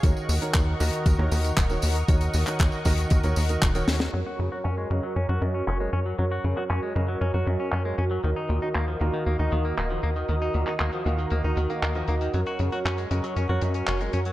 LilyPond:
<<
  \new Staff \with { instrumentName = "Analog synth pad" } { \time 4/4 \key ges \major \tempo 4 = 117 << { <ees'' des'''>1~ | <ees'' des'''>1 | <des'' des'''>1~ | <des'' des'''>1 |
<ees'' ees'''>1~ | <ees'' ees'''>1 | <des'' des'''>1 | } \\ { <bes' ges''>1~ | <bes' ges''>1 | <ges' bes'>1~ | <ges' bes'>1~ |
<ges' bes'>1~ | <ges' bes'>1~ | <ges' bes'>1 | } >> }
  \new Staff \with { instrumentName = "Grand piano" } { \time 4/4 \key ges \major <ees ees' ges' bes' des''>8. <ees ees' ges' bes' des''>8 r16 <ees ees' ges' bes' ees''>8. <ees ees' ges' bes' des''>16 <ees ees' ges' bes' ees''>16 r8 <ees ees' ges' bes' des''>16 r8 | <ees ees' ges' bes' des''>8. <ees ees' ges' bes' des''>8 r16 <ees ees' ges' bes' ees''>8. <ees ees' ges' bes' des''>16 r16 <ees ees' ges' bes' ees''>16 r16 <ees ees' ges' bes' des''>16 <ees' ges' bes' des''>8 | <ges des' ges' bes' des''>8. <ges des' ges' bes' des''>8 r16 <ges des' ges' bes' ees''>8. <ges des' ges' bes' des''>16 <ges des' ges' bes' ees''>16 r8 <ges des' ges' bes' des''>16 r8 | <ges des' ges' bes' des''>8. <ges des' ges' bes' des''>8 r16 <ges des' ges' bes' ees''>8. <ges des' ges' bes' des''>16 <ges des' ges' bes' ees''>16 r8 <ges des' ges' bes' des''>16 r8 |
<ees ees' ges' bes' ees''>8. <ees ees' ges' bes' ees''>8 r16 <ees ees' ges' bes' f''>8. <ees ees' ges' bes' ees''>16 <ees ees' ges' bes' f''>16 r8 <ees ees' ges' bes' ees''>16 r8 | <ees ees' ges' bes' ees''>8. <ees ees' ges' bes' ees''>8 r16 <ees ees' ges' bes' f''>8. <ees ees' ges' bes' ees''>16 r16 <ees ees' ges' bes' f''>16 r16 <ees ees' ges' bes' ees''>16 <ees' ges' bes' ees''>8 | <ges des' ges' bes' des''>8. <ges des' ges' bes' des''>8 r16 <ges des' ges' bes' ees''>8. <ges des' ges' bes' des''>16 <ges des' ges' bes' ees''>16 r8 <ges des' ges' bes' des''>16 r8 | }
  \new Staff \with { instrumentName = "Clean electric guitar" } { \time 4/4 \key ges \major r1 | r1 | ges16 ges'16 des16 ges'16 des'16 aes16 des16 ges16 des'16 ges'16 ges,16 des'16 des'16 aes16 des'16 ges16 | ges16 ges'16 des16 ges'16 des'16 aes16 des16 ges16 des'16 ges'16 ges,16 des'16 des'16 aes16 des'16 ges16 |
ees16 ees'16 bes,16 ees'16 bes16 f16 bes,16 ees16 bes16 ees'16 ees16 bes16 bes16 f16 bes16 ees16 | ees16 ees'16 bes,16 ees'16 bes16 f16 bes,16 ees16 bes16 ees'16 ees16 bes16 bes16 f16 bes16 ees16 | ges16 ges'16 des16 ges'16 des'16 aes16 des16 ges16 des'16 ges'16 ges,16 des'16 des'16 aes16 des'16 ges16 | }
  \new Staff \with { instrumentName = "Analog synth bass" } { \clef bass \time 4/4 \key ges \major ees,16 r16 ees,16 r16 ees,8 ees,16 r16 ees,16 ees,16 ees,8 ees,,8 ees,8 | ees,8 ees,16 r16 ees,16 r16 ees,8 ees,16 ees,16 ees,8 ees,,8 ees,8 | ges,16 r16 ges,16 r16 ges,8 ges,16 r16 ges,16 ges,16 ges,8 ges,,8 ges,8 | ges,8 ges,16 r16 ges,16 r16 ges,8 ges,16 ges,16 ges,16 r16 ges,8 ges,8 |
ees,16 r16 ees,16 r16 ees,8 ees,16 r16 ees,16 ees,16 ees,8 ees,,8 ees,8 | ees,8 ees,16 r16 ees,16 r16 ees,8 ees,16 ees,16 ees,16 r16 ees,8 ees,8 | ges,16 r16 ges,16 r16 ges,8 ges,16 r16 ges,16 ges,16 ges,8 ges,,8 ges,8 | }
  \new DrumStaff \with { instrumentName = "Drums" } \drummode { \time 4/4 <hh bd tamb>16 tamb16 <hho tamb>16 <hh tamb>16 <hc hh bd tamb>8 <hho tamb>16 <hh tamb>16 <hh bd tamb>8 <hho tamb>16 <hh tamb>16 <hc hh bd tamb>16 tamb16 <hho tamb>16 <hh tamb>16 | <hh bd tamb>16 <hh tamb>16 <hho tamb>16 <hc hh tamb>16 <hc hh bd tamb>16 tamb16 <hho bd tamb>16 <hh tamb>16 <hh bd tamb>16 <hh tamb>16 <hho tamb>16 <hh tamb>16 <hc hh bd tamb>16 <hh tamb>16 <hho sn tamb>16 <sn tamb>16 | r4 hc4 hh4 hc8 hh16 hh16 | hh8 hh16 hc16 <hc hh>8 hh16 hh16 hh8 hh16 hh16 <hc hh>16 hh16 hh16 hh16 |
hh16 hh16 hh16 hh16 <hc hh>16 hh16 hh16 hh16 hh8 hh16 hh16 <hc hh>16 hh16 hh16 hh16 | hh16 hh16 hh16 <hc hh>16 <hc hh>16 hh16 hh16 hh16 hh8 hh16 hh16 <hc hh>16 hh16 hh16 hh16 | hh16 hh16 hh16 hh16 <hc hh>16 hh16 hh16 hh16 hh8 hh16 hh16 <hc hh>16 hh16 hh16 hh16 | }
>>